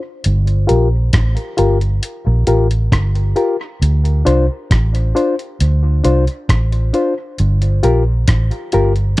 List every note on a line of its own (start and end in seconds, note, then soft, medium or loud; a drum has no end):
0.24 0.66 G1 medium
0.24 closed hi-hat medium
0.47 closed hi-hat soft
0.67 1.10 A#1 medium
0.67 0.87 F4 medium
0.67 0.87 G4 medium
0.67 0.88 A#4 loud
0.67 closed hi-hat medium
1.13 1.35 A1 medium
1.13 kick medium
1.13 cross-stick medium
1.13 closed hi-hat medium
1.37 closed hi-hat medium
1.57 1.99 G1 medium
1.57 1.77 F4 medium
1.57 1.77 G4 medium
1.57 1.77 A#4 medium
1.57 closed hi-hat medium
1.81 closed hi-hat soft
2.03 closed hi-hat medium
2.27 2.46 A#1 medium
2.47 2.88 A1 medium
2.47 2.66 F4 medium
2.47 2.66 G4 medium
2.47 2.67 A#4 medium
2.47 closed hi-hat medium
2.71 closed hi-hat soft
2.92 3.33 G1 medium
2.92 kick loud
2.92 cross-stick loud
2.92 closed hi-hat medium
3.15 closed hi-hat soft
3.36 3.55 F4 medium
3.36 3.55 G4 medium
3.36 3.56 A#4 medium
3.36 closed hi-hat medium
3.82 4.22 D2 medium
3.82 closed hi-hat medium
4.05 closed hi-hat soft
4.25 4.47 C2 medium
4.25 4.45 D4 medium
4.25 4.45 F4 medium
4.25 4.45 C5 loud
4.25 closed hi-hat medium
4.71 5.12 A1 medium
4.71 kick medium
4.71 cross-stick medium
4.71 closed hi-hat medium
4.95 closed hi-hat medium
5.15 5.34 D4 medium
5.15 5.34 F4 medium
5.15 5.35 C5 medium
5.15 closed hi-hat medium
5.39 closed hi-hat soft
5.60 6.01 D2 loud
5.60 closed hi-hat medium
6.04 6.26 C2 medium
6.04 6.23 D4 medium
6.04 6.24 F4 medium
6.04 6.24 C5 medium
6.04 closed hi-hat medium
6.27 closed hi-hat soft
6.49 6.90 A1 medium
6.49 kick loud
6.49 cross-stick medium
6.49 closed hi-hat medium
6.72 closed hi-hat soft
6.94 7.13 D4 medium
6.94 7.13 F4 medium
6.94 7.13 C5 medium
6.94 closed hi-hat medium
7.38 7.80 G1 medium
7.38 closed hi-hat medium
7.62 closed hi-hat soft
7.83 8.24 A#1 medium
7.83 8.02 F4 medium
7.83 8.03 G4 medium
7.83 8.03 A#4 medium
7.83 closed hi-hat medium
8.28 8.50 A1 medium
8.28 kick loud
8.28 cross-stick medium
8.28 closed hi-hat medium
8.51 closed hi-hat medium
8.72 9.14 G1 medium
8.72 8.92 F4 medium
8.72 8.92 G4 medium
8.72 8.93 A#4 medium
8.72 closed hi-hat medium
8.96 closed hi-hat soft